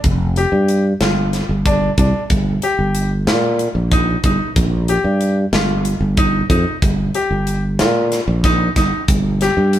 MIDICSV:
0, 0, Header, 1, 4, 480
1, 0, Start_track
1, 0, Key_signature, -2, "minor"
1, 0, Tempo, 645856
1, 31, Time_signature, 7, 3, 24, 8
1, 7277, End_track
2, 0, Start_track
2, 0, Title_t, "Grand piano"
2, 0, Program_c, 0, 0
2, 278, Note_on_c, 0, 67, 77
2, 605, Note_off_c, 0, 67, 0
2, 756, Note_on_c, 0, 65, 77
2, 1084, Note_off_c, 0, 65, 0
2, 1236, Note_on_c, 0, 62, 84
2, 1399, Note_off_c, 0, 62, 0
2, 1477, Note_on_c, 0, 62, 66
2, 1640, Note_off_c, 0, 62, 0
2, 1958, Note_on_c, 0, 67, 78
2, 2285, Note_off_c, 0, 67, 0
2, 2438, Note_on_c, 0, 65, 75
2, 2766, Note_off_c, 0, 65, 0
2, 2916, Note_on_c, 0, 63, 81
2, 3080, Note_off_c, 0, 63, 0
2, 3159, Note_on_c, 0, 63, 67
2, 3322, Note_off_c, 0, 63, 0
2, 3635, Note_on_c, 0, 67, 78
2, 3964, Note_off_c, 0, 67, 0
2, 4116, Note_on_c, 0, 65, 76
2, 4444, Note_off_c, 0, 65, 0
2, 4593, Note_on_c, 0, 63, 86
2, 4758, Note_off_c, 0, 63, 0
2, 4833, Note_on_c, 0, 63, 71
2, 4998, Note_off_c, 0, 63, 0
2, 5314, Note_on_c, 0, 67, 78
2, 5643, Note_off_c, 0, 67, 0
2, 5794, Note_on_c, 0, 65, 78
2, 6123, Note_off_c, 0, 65, 0
2, 6276, Note_on_c, 0, 63, 90
2, 6440, Note_off_c, 0, 63, 0
2, 6518, Note_on_c, 0, 63, 74
2, 6681, Note_off_c, 0, 63, 0
2, 7000, Note_on_c, 0, 67, 82
2, 7277, Note_off_c, 0, 67, 0
2, 7277, End_track
3, 0, Start_track
3, 0, Title_t, "Fretless electric bass"
3, 0, Program_c, 1, 35
3, 32, Note_on_c, 1, 29, 99
3, 327, Note_off_c, 1, 29, 0
3, 386, Note_on_c, 1, 43, 95
3, 684, Note_off_c, 1, 43, 0
3, 749, Note_on_c, 1, 31, 81
3, 1046, Note_off_c, 1, 31, 0
3, 1109, Note_on_c, 1, 31, 98
3, 1406, Note_off_c, 1, 31, 0
3, 1469, Note_on_c, 1, 36, 99
3, 1569, Note_off_c, 1, 36, 0
3, 1712, Note_on_c, 1, 31, 89
3, 1910, Note_off_c, 1, 31, 0
3, 2071, Note_on_c, 1, 31, 87
3, 2430, Note_on_c, 1, 46, 87
3, 2441, Note_off_c, 1, 31, 0
3, 2727, Note_off_c, 1, 46, 0
3, 2786, Note_on_c, 1, 34, 98
3, 3085, Note_off_c, 1, 34, 0
3, 3150, Note_on_c, 1, 31, 87
3, 3250, Note_off_c, 1, 31, 0
3, 3391, Note_on_c, 1, 34, 103
3, 3687, Note_off_c, 1, 34, 0
3, 3749, Note_on_c, 1, 43, 95
3, 4046, Note_off_c, 1, 43, 0
3, 4108, Note_on_c, 1, 31, 89
3, 4406, Note_off_c, 1, 31, 0
3, 4463, Note_on_c, 1, 31, 99
3, 4763, Note_off_c, 1, 31, 0
3, 4828, Note_on_c, 1, 41, 104
3, 4929, Note_off_c, 1, 41, 0
3, 5070, Note_on_c, 1, 31, 98
3, 5268, Note_off_c, 1, 31, 0
3, 5430, Note_on_c, 1, 31, 84
3, 5791, Note_on_c, 1, 46, 93
3, 5802, Note_off_c, 1, 31, 0
3, 6087, Note_off_c, 1, 46, 0
3, 6151, Note_on_c, 1, 34, 106
3, 6447, Note_off_c, 1, 34, 0
3, 6512, Note_on_c, 1, 31, 94
3, 6611, Note_off_c, 1, 31, 0
3, 6751, Note_on_c, 1, 31, 109
3, 7047, Note_off_c, 1, 31, 0
3, 7112, Note_on_c, 1, 43, 98
3, 7277, Note_off_c, 1, 43, 0
3, 7277, End_track
4, 0, Start_track
4, 0, Title_t, "Drums"
4, 28, Note_on_c, 9, 42, 71
4, 30, Note_on_c, 9, 36, 105
4, 103, Note_off_c, 9, 42, 0
4, 104, Note_off_c, 9, 36, 0
4, 269, Note_on_c, 9, 42, 56
4, 344, Note_off_c, 9, 42, 0
4, 509, Note_on_c, 9, 42, 60
4, 583, Note_off_c, 9, 42, 0
4, 748, Note_on_c, 9, 38, 103
4, 748, Note_on_c, 9, 42, 72
4, 822, Note_off_c, 9, 38, 0
4, 822, Note_off_c, 9, 42, 0
4, 990, Note_on_c, 9, 38, 31
4, 990, Note_on_c, 9, 42, 57
4, 1064, Note_off_c, 9, 38, 0
4, 1064, Note_off_c, 9, 42, 0
4, 1231, Note_on_c, 9, 36, 95
4, 1231, Note_on_c, 9, 42, 80
4, 1305, Note_off_c, 9, 36, 0
4, 1305, Note_off_c, 9, 42, 0
4, 1469, Note_on_c, 9, 42, 62
4, 1471, Note_on_c, 9, 36, 79
4, 1543, Note_off_c, 9, 42, 0
4, 1545, Note_off_c, 9, 36, 0
4, 1709, Note_on_c, 9, 42, 83
4, 1711, Note_on_c, 9, 36, 103
4, 1783, Note_off_c, 9, 42, 0
4, 1785, Note_off_c, 9, 36, 0
4, 1948, Note_on_c, 9, 42, 63
4, 2022, Note_off_c, 9, 42, 0
4, 2190, Note_on_c, 9, 42, 65
4, 2264, Note_off_c, 9, 42, 0
4, 2432, Note_on_c, 9, 38, 111
4, 2432, Note_on_c, 9, 42, 80
4, 2507, Note_off_c, 9, 38, 0
4, 2507, Note_off_c, 9, 42, 0
4, 2670, Note_on_c, 9, 42, 61
4, 2745, Note_off_c, 9, 42, 0
4, 2909, Note_on_c, 9, 42, 83
4, 2910, Note_on_c, 9, 36, 107
4, 2984, Note_off_c, 9, 42, 0
4, 2985, Note_off_c, 9, 36, 0
4, 3148, Note_on_c, 9, 42, 61
4, 3150, Note_on_c, 9, 36, 79
4, 3222, Note_off_c, 9, 42, 0
4, 3224, Note_off_c, 9, 36, 0
4, 3390, Note_on_c, 9, 36, 110
4, 3390, Note_on_c, 9, 42, 81
4, 3464, Note_off_c, 9, 36, 0
4, 3464, Note_off_c, 9, 42, 0
4, 3629, Note_on_c, 9, 42, 60
4, 3703, Note_off_c, 9, 42, 0
4, 3870, Note_on_c, 9, 42, 63
4, 3944, Note_off_c, 9, 42, 0
4, 4109, Note_on_c, 9, 38, 106
4, 4109, Note_on_c, 9, 42, 76
4, 4183, Note_off_c, 9, 38, 0
4, 4183, Note_off_c, 9, 42, 0
4, 4347, Note_on_c, 9, 42, 61
4, 4422, Note_off_c, 9, 42, 0
4, 4587, Note_on_c, 9, 42, 73
4, 4589, Note_on_c, 9, 36, 101
4, 4661, Note_off_c, 9, 42, 0
4, 4664, Note_off_c, 9, 36, 0
4, 4829, Note_on_c, 9, 36, 76
4, 4829, Note_on_c, 9, 42, 59
4, 4904, Note_off_c, 9, 36, 0
4, 4904, Note_off_c, 9, 42, 0
4, 5071, Note_on_c, 9, 36, 105
4, 5071, Note_on_c, 9, 42, 80
4, 5145, Note_off_c, 9, 36, 0
4, 5145, Note_off_c, 9, 42, 0
4, 5310, Note_on_c, 9, 42, 60
4, 5384, Note_off_c, 9, 42, 0
4, 5551, Note_on_c, 9, 42, 62
4, 5625, Note_off_c, 9, 42, 0
4, 5791, Note_on_c, 9, 38, 100
4, 5791, Note_on_c, 9, 42, 87
4, 5865, Note_off_c, 9, 38, 0
4, 5865, Note_off_c, 9, 42, 0
4, 6033, Note_on_c, 9, 38, 31
4, 6033, Note_on_c, 9, 42, 64
4, 6107, Note_off_c, 9, 38, 0
4, 6107, Note_off_c, 9, 42, 0
4, 6272, Note_on_c, 9, 36, 102
4, 6272, Note_on_c, 9, 38, 32
4, 6272, Note_on_c, 9, 42, 84
4, 6346, Note_off_c, 9, 36, 0
4, 6346, Note_off_c, 9, 38, 0
4, 6346, Note_off_c, 9, 42, 0
4, 6511, Note_on_c, 9, 38, 36
4, 6511, Note_on_c, 9, 42, 70
4, 6512, Note_on_c, 9, 36, 81
4, 6585, Note_off_c, 9, 38, 0
4, 6585, Note_off_c, 9, 42, 0
4, 6586, Note_off_c, 9, 36, 0
4, 6750, Note_on_c, 9, 42, 92
4, 6751, Note_on_c, 9, 36, 106
4, 6824, Note_off_c, 9, 42, 0
4, 6826, Note_off_c, 9, 36, 0
4, 6992, Note_on_c, 9, 38, 35
4, 6992, Note_on_c, 9, 42, 66
4, 7066, Note_off_c, 9, 38, 0
4, 7066, Note_off_c, 9, 42, 0
4, 7233, Note_on_c, 9, 42, 71
4, 7277, Note_off_c, 9, 42, 0
4, 7277, End_track
0, 0, End_of_file